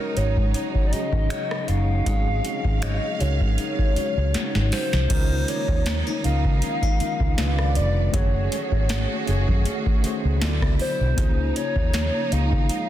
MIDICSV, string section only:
0, 0, Header, 1, 2, 480
1, 0, Start_track
1, 0, Key_signature, -5, "major"
1, 0, Tempo, 759494
1, 1304, Time_signature, 4, 2, 24, 8
1, 8148, End_track
2, 0, Start_track
2, 0, Title_t, "String section"
2, 0, Program_c, 0, 48
2, 0, Note_on_c, 0, 49, 81
2, 0, Note_on_c, 0, 54, 68
2, 0, Note_on_c, 0, 56, 70
2, 0, Note_on_c, 0, 63, 88
2, 1285, Note_off_c, 0, 63, 0
2, 1304, Note_on_c, 0, 77, 84
2, 3200, Note_off_c, 0, 49, 0
2, 3200, Note_off_c, 0, 54, 0
2, 3201, Note_off_c, 0, 56, 0
2, 3205, Note_off_c, 0, 77, 0
2, 3224, Note_on_c, 0, 53, 75
2, 3225, Note_on_c, 0, 58, 73
2, 3225, Note_on_c, 0, 63, 88
2, 3228, Note_on_c, 0, 51, 75
2, 4650, Note_off_c, 0, 58, 0
2, 4650, Note_off_c, 0, 63, 0
2, 4664, Note_on_c, 0, 59, 66
2, 4665, Note_on_c, 0, 74, 78
2, 5125, Note_off_c, 0, 53, 0
2, 5139, Note_off_c, 0, 59, 0
2, 5140, Note_off_c, 0, 74, 0
2, 5141, Note_on_c, 0, 57, 76
2, 5143, Note_on_c, 0, 66, 84
2, 5143, Note_on_c, 0, 68, 74
2, 6561, Note_off_c, 0, 51, 0
2, 6568, Note_off_c, 0, 57, 0
2, 6569, Note_off_c, 0, 68, 0
2, 6570, Note_off_c, 0, 66, 0
2, 6581, Note_on_c, 0, 47, 68
2, 6581, Note_on_c, 0, 54, 70
2, 6581, Note_on_c, 0, 64, 84
2, 6582, Note_on_c, 0, 50, 73
2, 7058, Note_off_c, 0, 47, 0
2, 7058, Note_off_c, 0, 50, 0
2, 7058, Note_off_c, 0, 54, 0
2, 7058, Note_off_c, 0, 64, 0
2, 7058, Note_on_c, 0, 58, 75
2, 7059, Note_on_c, 0, 49, 80
2, 7059, Note_on_c, 0, 53, 73
2, 7060, Note_on_c, 0, 63, 94
2, 8148, Note_off_c, 0, 49, 0
2, 8148, Note_off_c, 0, 53, 0
2, 8148, Note_off_c, 0, 58, 0
2, 8148, Note_off_c, 0, 63, 0
2, 8148, End_track
0, 0, End_of_file